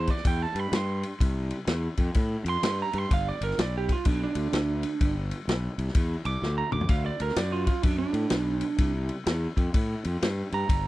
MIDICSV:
0, 0, Header, 1, 4, 480
1, 0, Start_track
1, 0, Tempo, 474308
1, 1221, Time_signature, 4, 2, 24, 8
1, 11006, End_track
2, 0, Start_track
2, 0, Title_t, "Lead electric guitar"
2, 0, Program_c, 0, 29
2, 0, Note_on_c, 0, 72, 89
2, 105, Note_off_c, 0, 72, 0
2, 105, Note_on_c, 0, 74, 77
2, 258, Note_off_c, 0, 74, 0
2, 276, Note_on_c, 0, 79, 86
2, 428, Note_off_c, 0, 79, 0
2, 428, Note_on_c, 0, 81, 89
2, 602, Note_off_c, 0, 81, 0
2, 602, Note_on_c, 0, 83, 88
2, 765, Note_off_c, 0, 83, 0
2, 765, Note_on_c, 0, 84, 89
2, 2153, Note_off_c, 0, 84, 0
2, 2524, Note_on_c, 0, 84, 95
2, 2823, Note_off_c, 0, 84, 0
2, 2856, Note_on_c, 0, 82, 83
2, 3018, Note_off_c, 0, 82, 0
2, 3018, Note_on_c, 0, 84, 82
2, 3156, Note_off_c, 0, 84, 0
2, 3173, Note_on_c, 0, 77, 87
2, 3313, Note_off_c, 0, 77, 0
2, 3324, Note_on_c, 0, 74, 87
2, 3468, Note_off_c, 0, 74, 0
2, 3477, Note_on_c, 0, 70, 90
2, 3624, Note_off_c, 0, 70, 0
2, 3648, Note_on_c, 0, 74, 85
2, 3790, Note_off_c, 0, 74, 0
2, 3819, Note_on_c, 0, 67, 92
2, 3956, Note_off_c, 0, 67, 0
2, 3969, Note_on_c, 0, 65, 83
2, 4109, Note_off_c, 0, 65, 0
2, 4109, Note_on_c, 0, 62, 87
2, 4261, Note_off_c, 0, 62, 0
2, 4286, Note_on_c, 0, 62, 93
2, 5205, Note_off_c, 0, 62, 0
2, 6338, Note_on_c, 0, 86, 95
2, 6650, Note_off_c, 0, 86, 0
2, 6657, Note_on_c, 0, 82, 82
2, 6803, Note_off_c, 0, 82, 0
2, 6807, Note_on_c, 0, 86, 88
2, 6969, Note_off_c, 0, 86, 0
2, 6976, Note_on_c, 0, 77, 91
2, 7134, Note_off_c, 0, 77, 0
2, 7143, Note_on_c, 0, 74, 87
2, 7297, Note_off_c, 0, 74, 0
2, 7303, Note_on_c, 0, 70, 87
2, 7455, Note_on_c, 0, 74, 85
2, 7457, Note_off_c, 0, 70, 0
2, 7613, Note_off_c, 0, 74, 0
2, 7614, Note_on_c, 0, 65, 96
2, 7750, Note_off_c, 0, 65, 0
2, 7762, Note_on_c, 0, 65, 80
2, 7922, Note_off_c, 0, 65, 0
2, 7922, Note_on_c, 0, 62, 87
2, 8068, Note_off_c, 0, 62, 0
2, 8080, Note_on_c, 0, 62, 88
2, 9020, Note_off_c, 0, 62, 0
2, 10668, Note_on_c, 0, 82, 102
2, 11006, Note_off_c, 0, 82, 0
2, 11006, End_track
3, 0, Start_track
3, 0, Title_t, "Fingered electric bass"
3, 0, Program_c, 1, 33
3, 260, Note_on_c, 1, 40, 88
3, 456, Note_off_c, 1, 40, 0
3, 555, Note_on_c, 1, 43, 79
3, 670, Note_off_c, 1, 43, 0
3, 726, Note_on_c, 1, 43, 85
3, 1038, Note_off_c, 1, 43, 0
3, 1220, Note_on_c, 1, 36, 94
3, 1527, Note_off_c, 1, 36, 0
3, 1694, Note_on_c, 1, 40, 89
3, 1892, Note_off_c, 1, 40, 0
3, 2000, Note_on_c, 1, 41, 90
3, 2114, Note_off_c, 1, 41, 0
3, 2185, Note_on_c, 1, 45, 88
3, 2380, Note_off_c, 1, 45, 0
3, 2478, Note_on_c, 1, 41, 82
3, 2592, Note_off_c, 1, 41, 0
3, 2659, Note_on_c, 1, 43, 84
3, 2856, Note_off_c, 1, 43, 0
3, 2973, Note_on_c, 1, 43, 88
3, 3083, Note_off_c, 1, 43, 0
3, 3148, Note_on_c, 1, 31, 96
3, 3342, Note_off_c, 1, 31, 0
3, 3451, Note_on_c, 1, 31, 90
3, 3561, Note_off_c, 1, 31, 0
3, 3626, Note_on_c, 1, 35, 84
3, 3931, Note_off_c, 1, 35, 0
3, 4110, Note_on_c, 1, 35, 87
3, 4303, Note_off_c, 1, 35, 0
3, 4405, Note_on_c, 1, 38, 85
3, 4517, Note_off_c, 1, 38, 0
3, 4582, Note_on_c, 1, 38, 85
3, 4889, Note_off_c, 1, 38, 0
3, 5073, Note_on_c, 1, 31, 92
3, 5376, Note_off_c, 1, 31, 0
3, 5543, Note_on_c, 1, 35, 79
3, 5738, Note_off_c, 1, 35, 0
3, 5851, Note_on_c, 1, 36, 88
3, 5961, Note_off_c, 1, 36, 0
3, 6022, Note_on_c, 1, 40, 87
3, 6218, Note_off_c, 1, 40, 0
3, 6326, Note_on_c, 1, 36, 82
3, 6437, Note_off_c, 1, 36, 0
3, 6498, Note_on_c, 1, 38, 81
3, 6695, Note_off_c, 1, 38, 0
3, 6814, Note_on_c, 1, 38, 83
3, 6923, Note_off_c, 1, 38, 0
3, 6974, Note_on_c, 1, 38, 89
3, 7172, Note_off_c, 1, 38, 0
3, 7289, Note_on_c, 1, 38, 79
3, 7400, Note_off_c, 1, 38, 0
3, 7451, Note_on_c, 1, 42, 86
3, 7761, Note_off_c, 1, 42, 0
3, 7935, Note_on_c, 1, 42, 86
3, 8132, Note_off_c, 1, 42, 0
3, 8230, Note_on_c, 1, 45, 85
3, 8347, Note_off_c, 1, 45, 0
3, 8408, Note_on_c, 1, 35, 84
3, 8719, Note_off_c, 1, 35, 0
3, 8895, Note_on_c, 1, 36, 95
3, 9203, Note_off_c, 1, 36, 0
3, 9374, Note_on_c, 1, 40, 93
3, 9572, Note_off_c, 1, 40, 0
3, 9684, Note_on_c, 1, 41, 93
3, 9795, Note_off_c, 1, 41, 0
3, 9862, Note_on_c, 1, 45, 82
3, 10057, Note_off_c, 1, 45, 0
3, 10175, Note_on_c, 1, 41, 82
3, 10283, Note_off_c, 1, 41, 0
3, 10346, Note_on_c, 1, 43, 89
3, 10540, Note_off_c, 1, 43, 0
3, 10651, Note_on_c, 1, 43, 83
3, 10760, Note_off_c, 1, 43, 0
3, 10822, Note_on_c, 1, 31, 90
3, 11006, Note_off_c, 1, 31, 0
3, 11006, End_track
4, 0, Start_track
4, 0, Title_t, "Drums"
4, 75, Note_on_c, 9, 51, 63
4, 79, Note_on_c, 9, 36, 69
4, 172, Note_on_c, 9, 38, 33
4, 176, Note_off_c, 9, 51, 0
4, 180, Note_off_c, 9, 36, 0
4, 251, Note_on_c, 9, 51, 92
4, 253, Note_on_c, 9, 36, 102
4, 273, Note_off_c, 9, 38, 0
4, 352, Note_off_c, 9, 51, 0
4, 354, Note_off_c, 9, 36, 0
4, 562, Note_on_c, 9, 51, 65
4, 663, Note_off_c, 9, 51, 0
4, 736, Note_on_c, 9, 51, 88
4, 740, Note_on_c, 9, 38, 107
4, 837, Note_off_c, 9, 51, 0
4, 841, Note_off_c, 9, 38, 0
4, 1045, Note_on_c, 9, 51, 68
4, 1147, Note_off_c, 9, 51, 0
4, 1219, Note_on_c, 9, 36, 98
4, 1225, Note_on_c, 9, 51, 86
4, 1320, Note_off_c, 9, 36, 0
4, 1326, Note_off_c, 9, 51, 0
4, 1523, Note_on_c, 9, 51, 62
4, 1624, Note_off_c, 9, 51, 0
4, 1693, Note_on_c, 9, 51, 82
4, 1697, Note_on_c, 9, 38, 105
4, 1794, Note_off_c, 9, 51, 0
4, 1798, Note_off_c, 9, 38, 0
4, 1998, Note_on_c, 9, 51, 60
4, 2003, Note_on_c, 9, 36, 76
4, 2099, Note_off_c, 9, 51, 0
4, 2104, Note_off_c, 9, 36, 0
4, 2170, Note_on_c, 9, 51, 86
4, 2179, Note_on_c, 9, 36, 97
4, 2271, Note_off_c, 9, 51, 0
4, 2280, Note_off_c, 9, 36, 0
4, 2487, Note_on_c, 9, 51, 65
4, 2588, Note_off_c, 9, 51, 0
4, 2663, Note_on_c, 9, 51, 96
4, 2667, Note_on_c, 9, 38, 113
4, 2764, Note_off_c, 9, 51, 0
4, 2768, Note_off_c, 9, 38, 0
4, 2968, Note_on_c, 9, 51, 67
4, 3069, Note_off_c, 9, 51, 0
4, 3146, Note_on_c, 9, 36, 100
4, 3148, Note_on_c, 9, 51, 85
4, 3247, Note_off_c, 9, 36, 0
4, 3249, Note_off_c, 9, 51, 0
4, 3456, Note_on_c, 9, 51, 73
4, 3550, Note_on_c, 9, 38, 30
4, 3557, Note_off_c, 9, 51, 0
4, 3630, Note_on_c, 9, 51, 88
4, 3634, Note_off_c, 9, 38, 0
4, 3634, Note_on_c, 9, 38, 106
4, 3731, Note_off_c, 9, 51, 0
4, 3735, Note_off_c, 9, 38, 0
4, 3934, Note_on_c, 9, 36, 77
4, 3936, Note_on_c, 9, 51, 68
4, 4035, Note_off_c, 9, 36, 0
4, 4038, Note_off_c, 9, 51, 0
4, 4098, Note_on_c, 9, 51, 92
4, 4106, Note_on_c, 9, 36, 107
4, 4199, Note_off_c, 9, 51, 0
4, 4207, Note_off_c, 9, 36, 0
4, 4403, Note_on_c, 9, 51, 73
4, 4505, Note_off_c, 9, 51, 0
4, 4586, Note_on_c, 9, 51, 90
4, 4590, Note_on_c, 9, 38, 106
4, 4687, Note_off_c, 9, 51, 0
4, 4691, Note_off_c, 9, 38, 0
4, 4888, Note_on_c, 9, 51, 70
4, 4989, Note_off_c, 9, 51, 0
4, 5067, Note_on_c, 9, 51, 86
4, 5068, Note_on_c, 9, 36, 96
4, 5169, Note_off_c, 9, 51, 0
4, 5170, Note_off_c, 9, 36, 0
4, 5376, Note_on_c, 9, 51, 64
4, 5477, Note_off_c, 9, 51, 0
4, 5553, Note_on_c, 9, 51, 85
4, 5557, Note_on_c, 9, 38, 107
4, 5654, Note_off_c, 9, 51, 0
4, 5658, Note_off_c, 9, 38, 0
4, 5855, Note_on_c, 9, 51, 65
4, 5949, Note_on_c, 9, 38, 33
4, 5956, Note_off_c, 9, 51, 0
4, 6018, Note_on_c, 9, 51, 87
4, 6022, Note_on_c, 9, 36, 103
4, 6050, Note_off_c, 9, 38, 0
4, 6119, Note_off_c, 9, 51, 0
4, 6123, Note_off_c, 9, 36, 0
4, 6326, Note_on_c, 9, 51, 64
4, 6428, Note_off_c, 9, 51, 0
4, 6507, Note_on_c, 9, 38, 60
4, 6608, Note_off_c, 9, 38, 0
4, 6799, Note_on_c, 9, 45, 83
4, 6890, Note_on_c, 9, 43, 80
4, 6900, Note_off_c, 9, 45, 0
4, 6969, Note_on_c, 9, 51, 85
4, 6975, Note_on_c, 9, 36, 98
4, 6991, Note_off_c, 9, 43, 0
4, 7070, Note_off_c, 9, 51, 0
4, 7076, Note_off_c, 9, 36, 0
4, 7283, Note_on_c, 9, 51, 64
4, 7375, Note_on_c, 9, 38, 33
4, 7385, Note_off_c, 9, 51, 0
4, 7452, Note_on_c, 9, 51, 94
4, 7456, Note_off_c, 9, 38, 0
4, 7456, Note_on_c, 9, 38, 106
4, 7553, Note_off_c, 9, 51, 0
4, 7557, Note_off_c, 9, 38, 0
4, 7760, Note_on_c, 9, 36, 79
4, 7761, Note_on_c, 9, 51, 66
4, 7861, Note_off_c, 9, 36, 0
4, 7862, Note_off_c, 9, 51, 0
4, 7926, Note_on_c, 9, 51, 92
4, 7931, Note_on_c, 9, 36, 112
4, 8027, Note_off_c, 9, 51, 0
4, 8032, Note_off_c, 9, 36, 0
4, 8235, Note_on_c, 9, 51, 69
4, 8337, Note_off_c, 9, 51, 0
4, 8400, Note_on_c, 9, 51, 88
4, 8404, Note_on_c, 9, 38, 101
4, 8501, Note_off_c, 9, 51, 0
4, 8505, Note_off_c, 9, 38, 0
4, 8711, Note_on_c, 9, 51, 72
4, 8812, Note_off_c, 9, 51, 0
4, 8889, Note_on_c, 9, 51, 90
4, 8891, Note_on_c, 9, 36, 105
4, 8990, Note_off_c, 9, 51, 0
4, 8992, Note_off_c, 9, 36, 0
4, 9197, Note_on_c, 9, 51, 60
4, 9298, Note_off_c, 9, 51, 0
4, 9376, Note_on_c, 9, 51, 89
4, 9380, Note_on_c, 9, 38, 105
4, 9477, Note_off_c, 9, 51, 0
4, 9482, Note_off_c, 9, 38, 0
4, 9685, Note_on_c, 9, 36, 79
4, 9689, Note_on_c, 9, 51, 59
4, 9786, Note_off_c, 9, 36, 0
4, 9790, Note_off_c, 9, 51, 0
4, 9857, Note_on_c, 9, 51, 90
4, 9859, Note_on_c, 9, 36, 104
4, 9958, Note_off_c, 9, 51, 0
4, 9960, Note_off_c, 9, 36, 0
4, 10165, Note_on_c, 9, 51, 65
4, 10267, Note_off_c, 9, 51, 0
4, 10347, Note_on_c, 9, 51, 87
4, 10351, Note_on_c, 9, 38, 109
4, 10448, Note_off_c, 9, 51, 0
4, 10452, Note_off_c, 9, 38, 0
4, 10650, Note_on_c, 9, 51, 61
4, 10751, Note_off_c, 9, 51, 0
4, 10821, Note_on_c, 9, 36, 107
4, 10824, Note_on_c, 9, 51, 90
4, 10922, Note_off_c, 9, 36, 0
4, 10926, Note_off_c, 9, 51, 0
4, 11006, End_track
0, 0, End_of_file